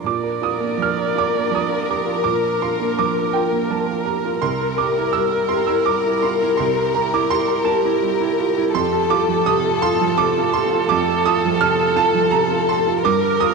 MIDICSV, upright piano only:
0, 0, Header, 1, 2, 480
1, 0, Start_track
1, 0, Key_signature, -2, "major"
1, 0, Tempo, 727273
1, 30, Time_signature, 6, 3, 24, 8
1, 4349, Tempo, 715990
1, 9010, End_track
2, 0, Start_track
2, 0, Title_t, "Upright piano"
2, 0, Program_c, 0, 0
2, 0, Control_c, 0, 64, 127
2, 25, Note_on_c, 0, 46, 61
2, 42, Control_c, 0, 64, 0
2, 42, Note_on_c, 0, 86, 73
2, 155, Note_on_c, 0, 70, 48
2, 157, Control_c, 0, 64, 127
2, 266, Note_off_c, 0, 86, 0
2, 275, Note_on_c, 0, 65, 52
2, 285, Note_on_c, 0, 87, 82
2, 351, Note_off_c, 0, 70, 0
2, 394, Note_on_c, 0, 58, 51
2, 471, Note_off_c, 0, 65, 0
2, 509, Note_off_c, 0, 87, 0
2, 512, Note_on_c, 0, 53, 48
2, 543, Note_on_c, 0, 89, 90
2, 591, Note_off_c, 0, 58, 0
2, 639, Note_on_c, 0, 70, 46
2, 709, Note_off_c, 0, 53, 0
2, 757, Note_off_c, 0, 89, 0
2, 760, Note_on_c, 0, 65, 54
2, 781, Note_on_c, 0, 86, 92
2, 832, Note_off_c, 0, 70, 0
2, 883, Note_on_c, 0, 58, 54
2, 953, Note_off_c, 0, 65, 0
2, 995, Note_on_c, 0, 53, 49
2, 996, Note_off_c, 0, 86, 0
2, 1022, Note_on_c, 0, 87, 83
2, 1075, Note_off_c, 0, 58, 0
2, 1114, Note_on_c, 0, 65, 42
2, 1191, Note_off_c, 0, 53, 0
2, 1237, Note_off_c, 0, 87, 0
2, 1242, Note_on_c, 0, 67, 41
2, 1258, Note_on_c, 0, 86, 73
2, 1311, Note_off_c, 0, 65, 0
2, 1362, Note_on_c, 0, 65, 50
2, 1363, Note_off_c, 0, 67, 0
2, 1455, Note_off_c, 0, 46, 0
2, 1467, Note_off_c, 0, 86, 0
2, 1477, Note_on_c, 0, 86, 92
2, 1480, Note_on_c, 0, 46, 63
2, 1495, Control_c, 0, 64, 0
2, 1554, Note_off_c, 0, 65, 0
2, 1596, Control_c, 0, 64, 127
2, 1606, Note_on_c, 0, 70, 44
2, 1702, Note_off_c, 0, 86, 0
2, 1727, Note_on_c, 0, 65, 51
2, 1731, Note_on_c, 0, 84, 83
2, 1795, Note_off_c, 0, 70, 0
2, 1848, Note_on_c, 0, 58, 53
2, 1916, Note_off_c, 0, 65, 0
2, 1950, Note_off_c, 0, 84, 0
2, 1971, Note_on_c, 0, 53, 49
2, 1971, Note_on_c, 0, 86, 94
2, 2038, Note_off_c, 0, 58, 0
2, 2089, Note_on_c, 0, 70, 47
2, 2160, Note_off_c, 0, 53, 0
2, 2191, Note_off_c, 0, 86, 0
2, 2199, Note_on_c, 0, 79, 79
2, 2209, Note_on_c, 0, 65, 61
2, 2278, Note_off_c, 0, 70, 0
2, 2320, Note_on_c, 0, 58, 58
2, 2397, Note_off_c, 0, 65, 0
2, 2423, Note_off_c, 0, 79, 0
2, 2442, Note_on_c, 0, 53, 53
2, 2448, Note_on_c, 0, 81, 67
2, 2511, Note_off_c, 0, 58, 0
2, 2565, Note_on_c, 0, 65, 48
2, 2632, Note_off_c, 0, 53, 0
2, 2666, Note_off_c, 0, 81, 0
2, 2675, Note_on_c, 0, 82, 79
2, 2680, Note_on_c, 0, 67, 40
2, 2753, Note_off_c, 0, 65, 0
2, 2798, Note_off_c, 0, 67, 0
2, 2802, Note_on_c, 0, 65, 46
2, 2890, Note_off_c, 0, 46, 0
2, 2899, Note_off_c, 0, 82, 0
2, 2914, Note_on_c, 0, 84, 95
2, 2918, Note_on_c, 0, 36, 64
2, 2919, Note_off_c, 0, 65, 0
2, 2928, Control_c, 0, 64, 0
2, 3031, Control_c, 0, 64, 127
2, 3044, Note_on_c, 0, 70, 47
2, 3138, Note_off_c, 0, 84, 0
2, 3154, Note_on_c, 0, 86, 90
2, 3171, Note_on_c, 0, 67, 55
2, 3232, Note_off_c, 0, 70, 0
2, 3286, Note_on_c, 0, 64, 53
2, 3355, Note_off_c, 0, 67, 0
2, 3377, Note_off_c, 0, 86, 0
2, 3384, Note_on_c, 0, 88, 96
2, 3410, Note_on_c, 0, 55, 55
2, 3472, Note_off_c, 0, 64, 0
2, 3514, Note_on_c, 0, 70, 49
2, 3593, Note_off_c, 0, 55, 0
2, 3611, Note_off_c, 0, 88, 0
2, 3621, Note_on_c, 0, 84, 90
2, 3648, Note_on_c, 0, 67, 65
2, 3705, Note_off_c, 0, 70, 0
2, 3738, Note_off_c, 0, 84, 0
2, 3741, Note_on_c, 0, 88, 79
2, 3761, Note_on_c, 0, 64, 58
2, 3832, Note_off_c, 0, 67, 0
2, 3858, Note_off_c, 0, 88, 0
2, 3866, Note_on_c, 0, 86, 96
2, 3882, Note_on_c, 0, 55, 53
2, 3948, Note_off_c, 0, 64, 0
2, 4002, Note_on_c, 0, 64, 51
2, 4068, Note_off_c, 0, 55, 0
2, 4091, Note_off_c, 0, 86, 0
2, 4109, Note_on_c, 0, 84, 83
2, 4119, Note_on_c, 0, 65, 48
2, 4188, Note_off_c, 0, 64, 0
2, 4234, Note_off_c, 0, 65, 0
2, 4237, Note_on_c, 0, 64, 55
2, 4323, Note_off_c, 0, 36, 0
2, 4328, Note_off_c, 0, 84, 0
2, 4338, Note_on_c, 0, 84, 89
2, 4354, Note_on_c, 0, 36, 65
2, 4360, Control_c, 0, 64, 0
2, 4424, Note_off_c, 0, 64, 0
2, 4482, Control_c, 0, 64, 127
2, 4482, Note_on_c, 0, 70, 58
2, 4565, Note_off_c, 0, 84, 0
2, 4588, Note_on_c, 0, 67, 61
2, 4589, Note_on_c, 0, 82, 96
2, 4666, Note_off_c, 0, 70, 0
2, 4699, Note_off_c, 0, 82, 0
2, 4715, Note_on_c, 0, 64, 61
2, 4717, Note_on_c, 0, 86, 91
2, 4779, Note_off_c, 0, 67, 0
2, 4824, Note_off_c, 0, 86, 0
2, 4828, Note_on_c, 0, 84, 118
2, 4831, Note_on_c, 0, 55, 65
2, 4902, Note_off_c, 0, 64, 0
2, 4946, Note_on_c, 0, 70, 56
2, 5020, Note_off_c, 0, 55, 0
2, 5050, Note_off_c, 0, 84, 0
2, 5059, Note_on_c, 0, 81, 94
2, 5070, Note_on_c, 0, 67, 65
2, 5138, Note_off_c, 0, 70, 0
2, 5192, Note_on_c, 0, 64, 66
2, 5260, Note_off_c, 0, 67, 0
2, 5286, Note_off_c, 0, 81, 0
2, 5312, Note_on_c, 0, 55, 65
2, 5382, Note_off_c, 0, 64, 0
2, 5430, Note_on_c, 0, 64, 64
2, 5503, Note_off_c, 0, 55, 0
2, 5560, Note_on_c, 0, 65, 54
2, 5623, Note_off_c, 0, 64, 0
2, 5676, Note_off_c, 0, 65, 0
2, 5678, Note_on_c, 0, 64, 67
2, 5768, Note_off_c, 0, 36, 0
2, 5792, Note_on_c, 0, 41, 76
2, 5795, Note_on_c, 0, 84, 106
2, 5796, Note_off_c, 0, 64, 0
2, 5804, Control_c, 0, 64, 0
2, 5909, Control_c, 0, 64, 127
2, 5917, Note_on_c, 0, 69, 70
2, 6020, Note_off_c, 0, 84, 0
2, 6030, Note_on_c, 0, 65, 74
2, 6034, Note_on_c, 0, 86, 113
2, 6110, Note_off_c, 0, 69, 0
2, 6156, Note_on_c, 0, 53, 63
2, 6226, Note_off_c, 0, 65, 0
2, 6260, Note_off_c, 0, 86, 0
2, 6275, Note_on_c, 0, 87, 117
2, 6281, Note_on_c, 0, 48, 70
2, 6348, Note_off_c, 0, 53, 0
2, 6399, Note_on_c, 0, 69, 61
2, 6471, Note_off_c, 0, 48, 0
2, 6498, Note_off_c, 0, 87, 0
2, 6516, Note_on_c, 0, 65, 81
2, 6516, Note_on_c, 0, 84, 118
2, 6589, Note_off_c, 0, 69, 0
2, 6644, Note_on_c, 0, 53, 78
2, 6708, Note_off_c, 0, 65, 0
2, 6739, Note_off_c, 0, 84, 0
2, 6754, Note_on_c, 0, 86, 117
2, 6769, Note_on_c, 0, 48, 72
2, 6831, Note_off_c, 0, 53, 0
2, 6885, Note_on_c, 0, 65, 68
2, 6954, Note_off_c, 0, 48, 0
2, 6978, Note_off_c, 0, 86, 0
2, 6993, Note_on_c, 0, 84, 102
2, 6996, Note_on_c, 0, 67, 59
2, 7072, Note_off_c, 0, 65, 0
2, 7115, Note_off_c, 0, 67, 0
2, 7121, Note_on_c, 0, 65, 69
2, 7207, Note_off_c, 0, 41, 0
2, 7217, Note_off_c, 0, 84, 0
2, 7231, Note_on_c, 0, 86, 117
2, 7242, Note_on_c, 0, 41, 90
2, 7247, Control_c, 0, 64, 0
2, 7309, Note_off_c, 0, 65, 0
2, 7339, Control_c, 0, 64, 127
2, 7361, Note_on_c, 0, 69, 64
2, 7455, Note_off_c, 0, 86, 0
2, 7476, Note_on_c, 0, 87, 116
2, 7481, Note_on_c, 0, 65, 69
2, 7549, Note_off_c, 0, 69, 0
2, 7606, Note_on_c, 0, 53, 72
2, 7668, Note_off_c, 0, 65, 0
2, 7697, Note_off_c, 0, 87, 0
2, 7712, Note_on_c, 0, 89, 127
2, 7722, Note_on_c, 0, 48, 72
2, 7790, Note_off_c, 0, 53, 0
2, 7836, Note_on_c, 0, 69, 70
2, 7908, Note_off_c, 0, 48, 0
2, 7934, Note_off_c, 0, 89, 0
2, 7950, Note_on_c, 0, 65, 86
2, 7953, Note_on_c, 0, 81, 117
2, 8024, Note_off_c, 0, 69, 0
2, 8072, Note_on_c, 0, 53, 75
2, 8141, Note_off_c, 0, 65, 0
2, 8174, Note_off_c, 0, 81, 0
2, 8184, Note_on_c, 0, 82, 113
2, 8190, Note_on_c, 0, 48, 71
2, 8263, Note_off_c, 0, 53, 0
2, 8316, Note_on_c, 0, 65, 64
2, 8382, Note_off_c, 0, 48, 0
2, 8410, Note_off_c, 0, 82, 0
2, 8438, Note_on_c, 0, 84, 99
2, 8439, Note_on_c, 0, 67, 57
2, 8505, Note_off_c, 0, 65, 0
2, 8555, Note_off_c, 0, 67, 0
2, 8562, Note_on_c, 0, 65, 71
2, 8647, Note_off_c, 0, 41, 0
2, 8658, Note_off_c, 0, 84, 0
2, 8676, Note_off_c, 0, 65, 0
2, 8678, Note_on_c, 0, 43, 89
2, 8679, Note_on_c, 0, 86, 115
2, 8682, Control_c, 0, 64, 0
2, 8793, Control_c, 0, 64, 127
2, 8801, Note_on_c, 0, 70, 66
2, 8898, Note_off_c, 0, 86, 0
2, 8918, Note_on_c, 0, 87, 117
2, 8927, Note_on_c, 0, 65, 68
2, 8989, Note_off_c, 0, 70, 0
2, 9010, Note_off_c, 0, 43, 0
2, 9010, Note_off_c, 0, 65, 0
2, 9010, Note_off_c, 0, 87, 0
2, 9010, End_track
0, 0, End_of_file